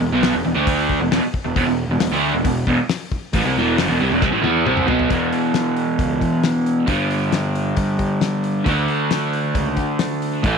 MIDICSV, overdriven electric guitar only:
0, 0, Header, 1, 3, 480
1, 0, Start_track
1, 0, Tempo, 443787
1, 1687, Time_signature, 4, 2, 24, 8
1, 11442, End_track
2, 0, Start_track
2, 0, Title_t, "Overdriven electric guitar"
2, 0, Program_c, 0, 29
2, 6, Note_on_c, 0, 40, 62
2, 11, Note_on_c, 0, 47, 68
2, 128, Note_off_c, 0, 40, 0
2, 130, Note_off_c, 0, 47, 0
2, 145, Note_on_c, 0, 47, 85
2, 153, Note_on_c, 0, 54, 82
2, 159, Note_on_c, 0, 59, 86
2, 366, Note_off_c, 0, 47, 0
2, 370, Note_on_c, 0, 40, 63
2, 374, Note_off_c, 0, 54, 0
2, 377, Note_off_c, 0, 59, 0
2, 379, Note_on_c, 0, 47, 62
2, 477, Note_off_c, 0, 47, 0
2, 478, Note_off_c, 0, 40, 0
2, 490, Note_on_c, 0, 47, 60
2, 491, Note_on_c, 0, 40, 62
2, 593, Note_off_c, 0, 47, 0
2, 598, Note_on_c, 0, 50, 84
2, 602, Note_on_c, 0, 57, 86
2, 609, Note_on_c, 0, 62, 89
2, 610, Note_off_c, 0, 40, 0
2, 1075, Note_off_c, 0, 50, 0
2, 1078, Note_off_c, 0, 57, 0
2, 1081, Note_off_c, 0, 62, 0
2, 1089, Note_on_c, 0, 47, 67
2, 1090, Note_on_c, 0, 40, 60
2, 1191, Note_off_c, 0, 40, 0
2, 1200, Note_off_c, 0, 47, 0
2, 1204, Note_on_c, 0, 40, 79
2, 1213, Note_on_c, 0, 47, 90
2, 1307, Note_off_c, 0, 40, 0
2, 1323, Note_off_c, 0, 47, 0
2, 1564, Note_on_c, 0, 47, 70
2, 1566, Note_on_c, 0, 40, 60
2, 1674, Note_off_c, 0, 40, 0
2, 1686, Note_off_c, 0, 47, 0
2, 1687, Note_on_c, 0, 40, 90
2, 1698, Note_on_c, 0, 47, 92
2, 1787, Note_off_c, 0, 40, 0
2, 1795, Note_off_c, 0, 47, 0
2, 1800, Note_on_c, 0, 40, 67
2, 1808, Note_on_c, 0, 47, 69
2, 1995, Note_off_c, 0, 40, 0
2, 1999, Note_off_c, 0, 47, 0
2, 2067, Note_on_c, 0, 40, 55
2, 2071, Note_on_c, 0, 47, 72
2, 2149, Note_off_c, 0, 40, 0
2, 2162, Note_off_c, 0, 47, 0
2, 2162, Note_on_c, 0, 40, 60
2, 2175, Note_on_c, 0, 47, 65
2, 2284, Note_off_c, 0, 40, 0
2, 2286, Note_off_c, 0, 47, 0
2, 2291, Note_on_c, 0, 50, 81
2, 2301, Note_on_c, 0, 57, 98
2, 2307, Note_on_c, 0, 62, 95
2, 2521, Note_off_c, 0, 50, 0
2, 2526, Note_off_c, 0, 57, 0
2, 2529, Note_off_c, 0, 62, 0
2, 2529, Note_on_c, 0, 40, 60
2, 2536, Note_on_c, 0, 47, 69
2, 2632, Note_off_c, 0, 40, 0
2, 2645, Note_off_c, 0, 47, 0
2, 2645, Note_on_c, 0, 40, 63
2, 2658, Note_on_c, 0, 47, 71
2, 2837, Note_off_c, 0, 40, 0
2, 2844, Note_off_c, 0, 47, 0
2, 2892, Note_on_c, 0, 40, 79
2, 2902, Note_on_c, 0, 47, 88
2, 3001, Note_off_c, 0, 40, 0
2, 3006, Note_off_c, 0, 47, 0
2, 3610, Note_on_c, 0, 45, 90
2, 3622, Note_on_c, 0, 52, 99
2, 3720, Note_off_c, 0, 45, 0
2, 3726, Note_off_c, 0, 52, 0
2, 3727, Note_on_c, 0, 48, 81
2, 3736, Note_on_c, 0, 55, 93
2, 3838, Note_off_c, 0, 48, 0
2, 3843, Note_off_c, 0, 55, 0
2, 3860, Note_on_c, 0, 40, 79
2, 3874, Note_on_c, 0, 47, 86
2, 3875, Note_on_c, 0, 52, 97
2, 4083, Note_off_c, 0, 40, 0
2, 4083, Note_off_c, 0, 47, 0
2, 4088, Note_on_c, 0, 42, 88
2, 4088, Note_on_c, 0, 49, 99
2, 4092, Note_off_c, 0, 52, 0
2, 4185, Note_off_c, 0, 42, 0
2, 4189, Note_on_c, 0, 40, 76
2, 4196, Note_off_c, 0, 49, 0
2, 4200, Note_on_c, 0, 47, 86
2, 4309, Note_off_c, 0, 40, 0
2, 4315, Note_off_c, 0, 47, 0
2, 4328, Note_on_c, 0, 48, 78
2, 4334, Note_on_c, 0, 55, 84
2, 4438, Note_off_c, 0, 48, 0
2, 4438, Note_on_c, 0, 40, 92
2, 4441, Note_off_c, 0, 55, 0
2, 4450, Note_on_c, 0, 47, 93
2, 4554, Note_off_c, 0, 40, 0
2, 4555, Note_off_c, 0, 47, 0
2, 4559, Note_on_c, 0, 48, 84
2, 4566, Note_on_c, 0, 55, 97
2, 4669, Note_off_c, 0, 48, 0
2, 4672, Note_off_c, 0, 55, 0
2, 4673, Note_on_c, 0, 45, 80
2, 4676, Note_on_c, 0, 52, 95
2, 4768, Note_off_c, 0, 52, 0
2, 4777, Note_off_c, 0, 45, 0
2, 4781, Note_on_c, 0, 52, 77
2, 4787, Note_on_c, 0, 59, 81
2, 4802, Note_on_c, 0, 64, 96
2, 5025, Note_off_c, 0, 52, 0
2, 5028, Note_off_c, 0, 59, 0
2, 5035, Note_off_c, 0, 64, 0
2, 5038, Note_on_c, 0, 48, 83
2, 5038, Note_on_c, 0, 55, 86
2, 5051, Note_on_c, 0, 60, 91
2, 5264, Note_off_c, 0, 48, 0
2, 5266, Note_off_c, 0, 55, 0
2, 5268, Note_on_c, 0, 47, 84
2, 5271, Note_on_c, 0, 54, 92
2, 5280, Note_off_c, 0, 60, 0
2, 5286, Note_on_c, 0, 59, 94
2, 5493, Note_on_c, 0, 40, 77
2, 5505, Note_off_c, 0, 47, 0
2, 5510, Note_off_c, 0, 54, 0
2, 5518, Note_off_c, 0, 59, 0
2, 5518, Note_on_c, 0, 47, 80
2, 5538, Note_on_c, 0, 52, 80
2, 7416, Note_off_c, 0, 40, 0
2, 7423, Note_on_c, 0, 43, 77
2, 7428, Note_off_c, 0, 47, 0
2, 7438, Note_off_c, 0, 52, 0
2, 7438, Note_on_c, 0, 50, 78
2, 7456, Note_on_c, 0, 55, 81
2, 9336, Note_off_c, 0, 50, 0
2, 9343, Note_off_c, 0, 43, 0
2, 9349, Note_on_c, 0, 50, 82
2, 9360, Note_off_c, 0, 55, 0
2, 9374, Note_on_c, 0, 57, 80
2, 9395, Note_on_c, 0, 62, 89
2, 11267, Note_off_c, 0, 50, 0
2, 11279, Note_off_c, 0, 57, 0
2, 11285, Note_on_c, 0, 45, 80
2, 11290, Note_off_c, 0, 62, 0
2, 11312, Note_on_c, 0, 52, 85
2, 11325, Note_on_c, 0, 57, 94
2, 11442, Note_off_c, 0, 45, 0
2, 11442, Note_off_c, 0, 52, 0
2, 11442, Note_off_c, 0, 57, 0
2, 11442, End_track
3, 0, Start_track
3, 0, Title_t, "Muted overdriven electric guitar strokes"
3, 1320, Note_on_c, 9, 29, 56
3, 1428, Note_off_c, 9, 29, 0
3, 11442, End_track
0, 0, End_of_file